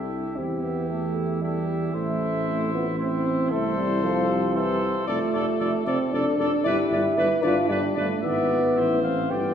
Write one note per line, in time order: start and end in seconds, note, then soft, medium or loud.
0.00 0.40 C2 soft
0.00 0.38 E4 medium
0.00 0.38 E4 soft
0.00 0.36 G4 soft
0.00 0.38 A4 medium
0.36 1.94 E2 soft
0.36 0.64 C4 medium
0.36 1.41 E4 medium
0.36 1.40 G4 medium
0.36 0.91 G4 medium
0.63 0.89 B3 medium
0.90 1.43 A3 medium
0.90 1.15 A4 medium
1.16 1.43 G4 medium
1.42 1.94 G3 medium
1.42 1.94 E4 medium
1.42 1.95 G4 medium
1.42 1.68 A4 medium
1.68 1.94 G4 medium
1.94 3.48 A1 medium
1.94 2.72 A3 medium
1.94 2.46 E4 medium
1.94 2.98 E4 medium
1.94 2.98 C5 medium
2.47 2.73 C4 medium
2.74 2.86 B3 medium
2.74 2.85 F4 medium
2.98 3.53 C4 loud
2.98 3.51 E4 medium
2.98 4.01 E4 medium
2.98 3.50 C5 medium
3.50 4.90 C2 medium
3.50 3.76 A3 loud
3.50 4.55 A4 medium
3.50 4.53 C5 medium
3.77 4.02 G3 medium
4.03 4.57 F3 loud
4.03 4.31 A4 medium
4.29 5.07 G4 medium
4.55 4.82 E3 medium
4.55 5.06 A4 medium
4.55 5.06 C5 medium
5.07 5.19 F1 medium
5.07 5.82 A3 loud
5.07 5.83 F4 medium
5.07 5.19 A4 medium
5.07 5.19 D5 medium
5.33 5.46 F1 medium
5.33 5.46 A4 medium
5.33 5.45 D5 medium
5.60 5.72 F1 medium
5.60 5.72 A4 medium
5.60 5.72 D5 medium
5.86 5.98 F1 medium
5.86 6.15 C4 loud
5.86 5.98 A4 medium
5.86 5.99 D5 medium
6.12 6.24 F1 medium
6.12 6.66 D4 loud
6.12 6.37 A4 medium
6.12 6.25 A4 medium
6.12 6.25 D5 medium
6.38 6.50 F1 medium
6.38 6.51 A4 medium
6.38 6.51 D5 medium
6.64 6.76 G1 medium
6.64 7.43 E4 loud
6.64 7.19 G4 medium
6.64 6.78 B4 medium
6.64 6.76 D5 medium
6.91 7.03 G1 medium
6.91 7.03 B4 medium
6.91 7.04 D5 medium
7.16 7.29 G1 medium
7.16 7.45 B4 loud
7.16 7.30 B4 medium
7.16 7.29 D5 medium
7.42 7.55 G1 medium
7.42 8.22 D4 medium
7.42 7.72 F4 loud
7.42 7.57 B4 medium
7.42 7.55 D5 medium
7.68 7.82 G1 medium
7.68 7.97 G3 loud
7.68 7.83 B4 medium
7.68 7.81 D5 medium
7.96 8.08 G1 medium
7.96 8.25 A3 loud
7.96 8.09 B4 medium
7.96 8.08 D5 medium
8.22 8.77 G#1 medium
8.22 9.03 B3 loud
8.22 8.48 E4 medium
8.22 8.79 D5 medium
8.22 8.72 E5 medium
8.49 8.61 F4 medium
8.76 9.30 A1 medium
8.76 9.29 E4 medium
8.76 9.33 C5 medium
8.76 9.03 E5 medium
9.03 9.30 C4 medium
9.03 9.32 F5 medium
9.30 9.54 G1 medium
9.30 9.54 B3 medium
9.30 9.54 G4 medium
9.30 9.54 D5 medium
9.30 9.54 G5 medium